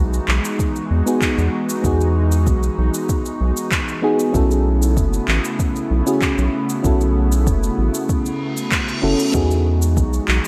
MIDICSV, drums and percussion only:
0, 0, Header, 1, 2, 480
1, 0, Start_track
1, 0, Key_signature, 4, "major"
1, 0, Tempo, 625000
1, 1415, Time_signature, 4, 2, 24, 8
1, 8047, End_track
2, 0, Start_track
2, 0, Title_t, "Drums"
2, 104, Note_on_c, 9, 69, 29
2, 181, Note_off_c, 9, 69, 0
2, 218, Note_on_c, 9, 39, 67
2, 294, Note_off_c, 9, 39, 0
2, 344, Note_on_c, 9, 69, 60
2, 420, Note_off_c, 9, 69, 0
2, 456, Note_on_c, 9, 36, 97
2, 457, Note_on_c, 9, 69, 49
2, 532, Note_off_c, 9, 36, 0
2, 534, Note_off_c, 9, 69, 0
2, 583, Note_on_c, 9, 69, 29
2, 659, Note_off_c, 9, 69, 0
2, 823, Note_on_c, 9, 69, 60
2, 899, Note_off_c, 9, 69, 0
2, 935, Note_on_c, 9, 36, 94
2, 936, Note_on_c, 9, 39, 66
2, 937, Note_on_c, 9, 69, 48
2, 1012, Note_off_c, 9, 36, 0
2, 1013, Note_off_c, 9, 39, 0
2, 1014, Note_off_c, 9, 69, 0
2, 1063, Note_on_c, 9, 69, 30
2, 1139, Note_off_c, 9, 69, 0
2, 1302, Note_on_c, 9, 69, 65
2, 1378, Note_off_c, 9, 69, 0
2, 1414, Note_on_c, 9, 36, 94
2, 1417, Note_on_c, 9, 69, 49
2, 1491, Note_off_c, 9, 36, 0
2, 1494, Note_off_c, 9, 69, 0
2, 1542, Note_on_c, 9, 69, 27
2, 1619, Note_off_c, 9, 69, 0
2, 1780, Note_on_c, 9, 69, 57
2, 1857, Note_off_c, 9, 69, 0
2, 1895, Note_on_c, 9, 36, 91
2, 1895, Note_on_c, 9, 69, 45
2, 1972, Note_off_c, 9, 36, 0
2, 1972, Note_off_c, 9, 69, 0
2, 2021, Note_on_c, 9, 69, 30
2, 2097, Note_off_c, 9, 69, 0
2, 2259, Note_on_c, 9, 69, 62
2, 2336, Note_off_c, 9, 69, 0
2, 2375, Note_on_c, 9, 36, 98
2, 2375, Note_on_c, 9, 69, 47
2, 2452, Note_off_c, 9, 36, 0
2, 2452, Note_off_c, 9, 69, 0
2, 2500, Note_on_c, 9, 69, 28
2, 2577, Note_off_c, 9, 69, 0
2, 2741, Note_on_c, 9, 69, 59
2, 2818, Note_off_c, 9, 69, 0
2, 2855, Note_on_c, 9, 36, 89
2, 2856, Note_on_c, 9, 39, 65
2, 2857, Note_on_c, 9, 69, 46
2, 2932, Note_off_c, 9, 36, 0
2, 2933, Note_off_c, 9, 39, 0
2, 2933, Note_off_c, 9, 69, 0
2, 2983, Note_on_c, 9, 69, 28
2, 3059, Note_off_c, 9, 69, 0
2, 3222, Note_on_c, 9, 69, 59
2, 3299, Note_off_c, 9, 69, 0
2, 3336, Note_on_c, 9, 36, 93
2, 3338, Note_on_c, 9, 69, 48
2, 3413, Note_off_c, 9, 36, 0
2, 3415, Note_off_c, 9, 69, 0
2, 3464, Note_on_c, 9, 69, 28
2, 3541, Note_off_c, 9, 69, 0
2, 3704, Note_on_c, 9, 69, 56
2, 3781, Note_off_c, 9, 69, 0
2, 3816, Note_on_c, 9, 36, 96
2, 3818, Note_on_c, 9, 69, 50
2, 3893, Note_off_c, 9, 36, 0
2, 3895, Note_off_c, 9, 69, 0
2, 3943, Note_on_c, 9, 69, 29
2, 4020, Note_off_c, 9, 69, 0
2, 4057, Note_on_c, 9, 39, 65
2, 4134, Note_off_c, 9, 39, 0
2, 4183, Note_on_c, 9, 69, 62
2, 4259, Note_off_c, 9, 69, 0
2, 4296, Note_on_c, 9, 36, 90
2, 4297, Note_on_c, 9, 69, 48
2, 4373, Note_off_c, 9, 36, 0
2, 4374, Note_off_c, 9, 69, 0
2, 4422, Note_on_c, 9, 69, 29
2, 4499, Note_off_c, 9, 69, 0
2, 4662, Note_on_c, 9, 69, 61
2, 4738, Note_off_c, 9, 69, 0
2, 4776, Note_on_c, 9, 36, 95
2, 4776, Note_on_c, 9, 39, 63
2, 4777, Note_on_c, 9, 69, 46
2, 4853, Note_off_c, 9, 36, 0
2, 4853, Note_off_c, 9, 39, 0
2, 4854, Note_off_c, 9, 69, 0
2, 4902, Note_on_c, 9, 69, 28
2, 4979, Note_off_c, 9, 69, 0
2, 5142, Note_on_c, 9, 69, 57
2, 5219, Note_off_c, 9, 69, 0
2, 5256, Note_on_c, 9, 36, 99
2, 5257, Note_on_c, 9, 69, 52
2, 5333, Note_off_c, 9, 36, 0
2, 5334, Note_off_c, 9, 69, 0
2, 5382, Note_on_c, 9, 69, 29
2, 5459, Note_off_c, 9, 69, 0
2, 5622, Note_on_c, 9, 69, 60
2, 5699, Note_off_c, 9, 69, 0
2, 5736, Note_on_c, 9, 36, 103
2, 5737, Note_on_c, 9, 69, 47
2, 5813, Note_off_c, 9, 36, 0
2, 5814, Note_off_c, 9, 69, 0
2, 5863, Note_on_c, 9, 69, 31
2, 5939, Note_off_c, 9, 69, 0
2, 6101, Note_on_c, 9, 69, 64
2, 6178, Note_off_c, 9, 69, 0
2, 6215, Note_on_c, 9, 69, 44
2, 6216, Note_on_c, 9, 36, 102
2, 6292, Note_off_c, 9, 36, 0
2, 6292, Note_off_c, 9, 69, 0
2, 6342, Note_on_c, 9, 69, 30
2, 6419, Note_off_c, 9, 69, 0
2, 6582, Note_on_c, 9, 69, 55
2, 6659, Note_off_c, 9, 69, 0
2, 6696, Note_on_c, 9, 36, 94
2, 6696, Note_on_c, 9, 39, 74
2, 6697, Note_on_c, 9, 69, 47
2, 6773, Note_off_c, 9, 36, 0
2, 6773, Note_off_c, 9, 39, 0
2, 6773, Note_off_c, 9, 69, 0
2, 6822, Note_on_c, 9, 69, 30
2, 6899, Note_off_c, 9, 69, 0
2, 7062, Note_on_c, 9, 69, 57
2, 7139, Note_off_c, 9, 69, 0
2, 7176, Note_on_c, 9, 36, 96
2, 7177, Note_on_c, 9, 69, 52
2, 7253, Note_off_c, 9, 36, 0
2, 7253, Note_off_c, 9, 69, 0
2, 7303, Note_on_c, 9, 69, 29
2, 7380, Note_off_c, 9, 69, 0
2, 7542, Note_on_c, 9, 69, 61
2, 7619, Note_off_c, 9, 69, 0
2, 7656, Note_on_c, 9, 36, 100
2, 7658, Note_on_c, 9, 69, 51
2, 7733, Note_off_c, 9, 36, 0
2, 7735, Note_off_c, 9, 69, 0
2, 7783, Note_on_c, 9, 69, 32
2, 7859, Note_off_c, 9, 69, 0
2, 7897, Note_on_c, 9, 39, 75
2, 7974, Note_off_c, 9, 39, 0
2, 8023, Note_on_c, 9, 69, 64
2, 8047, Note_off_c, 9, 69, 0
2, 8047, End_track
0, 0, End_of_file